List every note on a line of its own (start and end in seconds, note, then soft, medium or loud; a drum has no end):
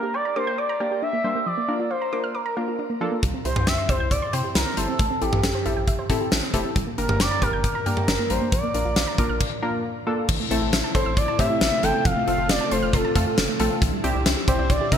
0.00 0.12 A#3 medium
0.00 0.12 D4 medium
0.00 0.12 G4 medium
0.00 0.12 A#4 medium
0.00 0.16 A#4 medium
0.14 0.35 D5 loud
0.14 0.23 G5 medium
0.25 0.34 A#5 medium
0.36 0.56 A#3 medium
0.36 0.56 D4 medium
0.36 0.56 G4 medium
0.36 0.56 A#4 medium
0.36 0.59 C5 medium
0.36 0.45 D6 loud
0.47 0.56 G6 medium
0.58 1.01 D5 loud
0.58 0.67 D6 medium
0.69 0.78 A#5 loud
0.80 1.00 A#3 medium
0.80 1.00 D4 medium
0.80 1.00 G4 medium
0.80 1.00 A#4 medium
0.80 0.89 G5 medium
0.91 1.00 G4 medium
1.02 1.11 D4 medium
1.02 1.48 E5 loud
1.13 1.22 A#3 medium
1.24 1.33 G3 medium
1.24 1.44 A#3 medium
1.24 1.44 D4 medium
1.24 1.44 G4 medium
1.24 1.44 C5 medium
1.35 1.44 A#3 medium
1.46 1.55 F3 medium
1.46 1.90 D5 loud
1.58 1.66 A#3 medium
1.68 1.88 A#3 medium
1.68 1.77 D4 medium
1.68 1.88 D4 medium
1.68 1.88 F4 medium
1.68 1.88 A#4 medium
1.80 1.88 F4 medium
1.90 2.36 C5 loud
1.90 1.99 F5 medium
2.02 2.10 A#5 medium
2.13 2.32 A#3 medium
2.13 2.32 D4 medium
2.13 2.32 F4 medium
2.13 2.32 A#4 medium
2.13 2.21 D6 loud
2.24 2.32 F6 medium
2.35 3.01 A#4 medium
2.35 2.43 D6 medium
2.46 2.54 A#5 loud
2.57 2.77 A#3 medium
2.57 2.77 D4 medium
2.57 2.77 F4 medium
2.57 2.77 A#4 medium
2.57 2.66 F5 medium
2.68 2.77 F4 medium
2.79 2.88 D4 medium
2.90 2.99 A#3 medium
3.01 3.10 F3 medium
3.01 3.21 A#3 medium
3.01 3.21 D4 medium
3.01 3.21 F4 medium
3.01 3.21 A4 medium
3.12 3.21 A#3 medium
3.23 3.32 C2 loud
3.23 3.32 G3 medium
3.23 kick loud
3.23 closed hi-hat medium
3.34 3.43 C4 medium
3.45 3.54 C2 medium
3.45 3.65 C4 medium
3.45 3.54 E4 medium
3.45 3.65 E4 medium
3.45 3.65 G4 medium
3.45 3.69 C5 loud
3.45 3.65 C5 medium
3.45 closed hi-hat medium
3.56 3.65 C2 medium
3.56 3.65 G4 loud
3.56 mid tom medium
3.67 3.76 C2 loud
3.67 3.88 E5 loud
3.67 3.76 G5 medium
3.67 snare loud
3.67 closed hi-hat medium
3.78 3.87 C6 medium
3.89 3.98 C2 loud
3.89 4.09 C4 medium
3.89 4.09 E4 medium
3.89 4.09 G4 medium
3.89 4.13 C5 loud
3.89 4.09 C5 medium
3.89 3.98 E6 loud
3.89 kick medium
3.89 closed hi-hat medium
4.00 4.09 C2 medium
4.00 4.09 G6 medium
4.11 4.20 C2 loud
4.11 4.35 D5 loud
4.11 4.20 E6 medium
4.11 kick medium
4.11 closed hi-hat medium
4.22 4.31 C6 loud
4.33 4.42 C3 medium
4.33 4.53 C4 medium
4.33 4.53 E4 medium
4.33 4.53 G4 medium
4.33 4.53 C5 medium
4.33 4.55 C5 loud
4.33 4.42 G5 medium
4.33 closed hi-hat medium
4.44 4.53 G4 medium
4.55 4.64 C2 loud
4.55 4.64 E4 medium
4.55 4.79 A#4 medium
4.55 snare loud
4.55 closed hi-hat medium
4.66 4.75 C4 medium
4.77 4.86 G1 medium
4.77 4.86 G3 medium
4.77 4.97 C4 medium
4.77 4.97 E4 medium
4.77 4.97 G4 medium
4.77 5.23 A4 loud
4.77 4.97 C5 medium
4.77 closed hi-hat medium
4.89 4.97 C4 medium
4.99 5.08 A1 loud
4.99 5.08 A3 medium
4.99 kick loud
4.99 closed hi-hat medium
5.11 5.19 C4 medium
5.21 5.31 A1 loud
5.21 5.41 C4 medium
5.21 5.30 E4 medium
5.21 5.41 E4 medium
5.21 6.10 G4 medium
5.21 5.41 G4 medium
5.21 5.41 A4 medium
5.21 closed hi-hat medium
5.33 5.42 A1 loud
5.33 5.41 G4 loud
5.33 mid tom medium
5.43 5.53 A1 loud
5.43 5.52 A4 medium
5.43 snare loud
5.43 closed hi-hat medium
5.55 5.64 C5 medium
5.66 5.75 A1 loud
5.66 5.85 C4 medium
5.66 5.85 E4 medium
5.66 5.85 G4 medium
5.66 5.85 A4 medium
5.66 5.74 E5 loud
5.66 closed hi-hat medium
5.77 5.86 A1 loud
5.77 5.85 G5 medium
5.87 5.97 A1 loud
5.87 5.97 E5 medium
5.87 kick medium
5.87 closed hi-hat medium
5.99 6.08 C5 loud
6.10 6.19 A2 loud
6.10 6.30 C4 medium
6.10 6.30 E4 medium
6.10 6.30 G4 medium
6.10 6.19 A4 medium
6.10 6.30 A4 loud
6.10 kick medium
6.10 closed hi-hat medium
6.21 6.30 G4 medium
6.32 6.41 A1 loud
6.32 6.41 E4 medium
6.32 snare loud
6.32 closed hi-hat medium
6.43 6.52 C4 medium
6.54 6.63 F1 medium
6.54 6.63 A3 medium
6.54 6.74 C4 medium
6.54 6.74 E4 medium
6.54 6.74 G4 medium
6.54 6.74 A4 medium
6.54 kick medium
6.54 closed hi-hat medium
6.65 6.74 C4 medium
6.76 6.85 G1 loud
6.76 6.85 G3 medium
6.76 kick loud
6.76 closed hi-hat medium
6.87 6.96 A#3 medium
6.98 7.07 G1 loud
6.98 7.18 A#3 medium
6.98 7.07 D4 medium
6.98 7.18 D4 medium
6.98 7.18 G4 medium
6.98 7.18 A#4 medium
6.98 7.19 A#4 medium
6.98 closed hi-hat medium
7.09 7.18 G1 loud
7.09 7.18 G4 medium
7.09 mid tom medium
7.20 7.29 G1 loud
7.20 7.44 D5 loud
7.20 7.29 G5 medium
7.20 snare loud
7.20 closed hi-hat medium
7.31 7.40 A#5 medium
7.42 7.51 G1 loud
7.42 7.62 A#3 medium
7.42 7.62 D4 medium
7.42 7.62 G4 medium
7.42 7.64 A#4 medium
7.42 7.62 A#4 medium
7.42 7.51 D6 loud
7.42 kick loud
7.42 closed hi-hat medium
7.53 7.62 G1 loud
7.53 7.62 G6 medium
7.64 7.73 G1 loud
7.64 8.32 A#4 loud
7.64 7.73 D6 medium
7.64 kick loud
7.64 closed hi-hat medium
7.75 7.84 A#5 loud
7.86 7.95 G2 medium
7.86 8.06 A#3 medium
7.86 8.06 D4 medium
7.86 8.06 G4 medium
7.86 8.06 A#4 medium
7.86 7.95 G5 medium
7.86 closed hi-hat medium
7.97 8.06 G4 medium
7.97 mid tom medium
8.08 8.17 G1 loud
8.08 8.17 D4 medium
8.08 snare loud
8.08 closed hi-hat medium
8.19 8.28 A#3 medium
8.30 8.39 A1 medium
8.30 8.39 G3 medium
8.30 8.50 A#3 medium
8.30 8.50 D4 medium
8.30 8.50 G4 medium
8.30 8.50 A#4 medium
8.30 8.52 C5 loud
8.30 closed hi-hat medium
8.41 8.50 A#3 medium
8.52 8.61 A#1 loud
8.52 8.61 F3 medium
8.52 9.81 D5 loud
8.52 kick loud
8.52 closed hi-hat medium
8.63 8.72 A#3 medium
8.74 8.83 A#1 loud
8.74 8.94 A#3 medium
8.74 8.83 D4 medium
8.74 8.94 D4 medium
8.74 8.94 F4 medium
8.74 8.94 A#4 medium
8.74 closed hi-hat medium
8.85 8.94 A#1 medium
8.85 8.94 F4 medium
8.96 9.05 A#1 loud
8.96 9.05 F5 medium
8.96 snare loud
8.96 closed hi-hat medium
9.07 9.16 A#5 medium
9.18 9.28 A#1 loud
9.18 9.38 A#3 medium
9.18 9.38 D4 medium
9.18 9.38 F4 medium
9.18 9.38 A#4 medium
9.18 9.27 D6 loud
9.18 kick loud
9.18 closed hi-hat medium
9.29 9.39 A#1 loud
9.29 9.38 F6 medium
9.41 kick loud
9.41 crash medium
9.63 9.82 A#3 medium
9.63 9.82 D4 medium
9.63 9.82 F4 medium
9.63 9.82 A#4 medium
10.07 10.27 A#3 medium
10.07 10.27 D4 medium
10.07 10.27 F4 medium
10.07 10.27 A4 medium
10.29 10.38 A1 loud
10.29 13.78 C3 medium
10.29 10.38 E3 medium
10.29 13.78 A3 medium
10.29 12.04 E4 loud
10.29 kick loud
10.29 crash loud
10.40 10.49 A3 medium
10.51 10.60 A1 loud
10.51 10.71 A3 medium
10.51 10.71 C4 medium
10.51 10.60 C4 medium
10.51 10.71 E4 medium
10.51 10.71 A4 loud
10.51 closed hi-hat medium
10.62 10.71 A1 loud
10.62 10.71 E4 loud
10.73 10.82 A1 loud
10.73 10.82 E5 medium
10.73 snare loud
10.73 closed hi-hat medium
10.84 10.93 A5 medium
10.95 11.04 A1 loud
10.95 11.15 A3 medium
10.95 11.15 C4 medium
10.95 11.15 E4 medium
10.95 11.15 A4 medium
10.95 11.15 C5 medium
10.95 11.04 C6 loud
10.95 kick loud
10.95 closed hi-hat medium
10.95 cowbell medium
11.06 11.15 A1 medium
11.06 11.15 E6 medium
11.17 11.26 A1 loud
11.17 11.41 D5 loud
11.17 11.26 C6 medium
11.17 kick loud
11.17 closed hi-hat medium
11.28 11.37 A5 loud
11.39 11.48 A2 loud
11.39 11.59 A3 medium
11.39 11.59 C4 medium
11.39 11.59 E4 medium
11.39 11.59 G4 medium
11.39 11.48 E5 medium
11.39 11.61 E5 loud
11.39 kick medium
11.39 closed hi-hat medium
11.39 cowbell medium
11.50 11.59 E4 medium
11.61 11.70 A1 loud
11.61 11.85 E5 loud
11.61 snare loud
11.61 closed hi-hat medium
11.72 11.81 A3 medium
11.83 11.92 G1 medium
11.83 11.92 E3 medium
11.83 12.03 A3 medium
11.83 12.03 C4 medium
11.83 12.03 E4 medium
11.83 12.03 A4 medium
11.83 12.07 G5 loud
11.83 closed hi-hat medium
11.94 12.03 A3 medium
12.05 12.14 F1 loud
12.05 12.14 F3 medium
12.05 13.80 F4 loud
12.05 12.27 F5 loud
12.05 kick loud
12.05 closed hi-hat medium
12.16 12.25 A3 medium
12.27 12.36 F1 loud
12.27 12.47 A3 medium
12.27 12.47 C4 medium
12.27 12.36 C4 medium
12.27 12.47 F4 medium
12.27 12.47 A4 medium
12.27 12.48 F5 loud
12.27 closed hi-hat medium
12.38 12.48 F1 loud
12.38 12.47 F4 loud
12.49 12.59 F1 loud
12.49 12.73 D5 loud
12.49 12.58 F5 medium
12.49 snare loud
12.49 closed hi-hat medium
12.61 12.69 A5 medium
12.71 12.81 F1 loud
12.71 12.91 A3 medium
12.71 12.91 C4 medium
12.71 12.91 F4 medium
12.71 12.91 A4 medium
12.71 12.95 C5 medium
12.71 12.80 C6 loud
12.71 closed hi-hat medium
12.82 12.92 F1 loud
12.82 12.91 F6 medium
12.93 13.03 F1 loud
12.93 13.60 A4 medium
12.93 13.02 C6 medium
12.93 kick loud
12.93 closed hi-hat medium
13.05 13.13 A5 loud
13.15 13.25 F2 loud
13.15 13.35 A3 medium
13.15 13.36 C4 medium
13.15 13.35 F4 medium
13.15 13.36 A4 medium
13.15 13.24 F5 medium
13.15 kick medium
13.15 closed hi-hat medium
13.27 13.35 F4 medium
13.38 13.47 F1 loud
13.38 snare loud
13.38 closed hi-hat medium
13.49 13.57 A3 medium
13.60 13.69 A#1 medium
13.60 13.69 F3 medium
13.60 13.80 A3 medium
13.60 13.80 C4 medium
13.60 13.80 F4 medium
13.60 13.80 A4 loud
13.60 closed hi-hat medium
13.71 13.80 A3 medium
13.82 13.91 C2 loud
13.82 14.98 D3 medium
13.82 13.91 E3 medium
13.82 14.98 C4 medium
13.82 14.98 E4 loud
13.82 kick loud
13.82 closed hi-hat medium
13.93 14.02 G3 medium
14.04 14.13 C2 loud
14.04 14.13 C4 medium
14.04 14.24 C4 medium
14.04 14.24 D4 medium
14.04 14.24 E4 medium
14.04 14.24 G4 loud
14.04 closed hi-hat medium
14.15 14.24 C2 loud
14.15 14.24 D4 medium
14.26 14.35 C2 loud
14.26 14.35 E4 medium
14.26 snare loud
14.26 closed hi-hat medium
14.37 14.46 G4 medium
14.48 14.57 C2 loud
14.48 14.68 C4 medium
14.48 14.68 D4 medium
14.48 14.68 E4 medium
14.48 14.68 G4 medium
14.48 14.57 C5 loud
14.48 14.69 C5 medium
14.48 kick loud
14.48 closed hi-hat medium
14.59 14.68 C2 loud
14.59 14.68 D5 medium
14.70 14.79 C2 loud
14.70 14.79 C5 medium
14.70 14.91 D5 medium
14.70 kick loud
14.70 closed hi-hat medium
14.81 14.90 G4 loud
14.92 14.98 C3 loud
14.92 14.98 C4 medium
14.92 14.98 D4 medium
14.92 14.98 E4 medium
14.92 14.98 A#4 medium
14.92 14.98 E5 loud
14.92 kick medium
14.92 closed hi-hat medium